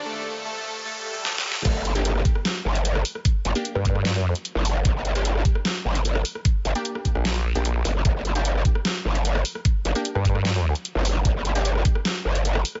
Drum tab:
CC |------------------------------------------------|x-----------------------------------------------|------------------------------------------------|------------------------------------------------|
HH |------------------------------------------------|x-----x--x--x-----x-----x--------x--x-----o-----|x-----x--x--x-----x-----x--------x--x-----o-----|x-----x--x--x-----x-----x--------x--x-----o-----|
SD |------------------------------------o---o---o---|---------------r-----r--o--------------r-----r--|---------------r-----r--o-----------------------|---------------r-----r--o--------------r-----r--|
BD |------------------------------------------------|o-----------------o-----------------------------|o-----------------o-----------------------------|o-----------------o-----------------------------|

CC |------------------------------------------------|------------------------------------------------|------------------------------------------------|------------------------------------------------|
HH |x-----x--x--x-----x-----x--------x--x-----o-----|x-----x--x--x-----x-----x--------x--x-----o-----|x-----x--x--x-----x-----x--------x--x-----o-----|x-----x--x--x-----x-----x--------x--x-----o-----|
SD |---------------r-----r--o-----------------------|---------------r-----r--o--------------r-----r--|---------------r-----r--o-----------------------|---------------r-----r--o--------------r-----r--|
BD |o-----------------o-----------------------------|o-----------------o-----------------------------|o-----------------o-----------------------------|o-----------------o-----------------------------|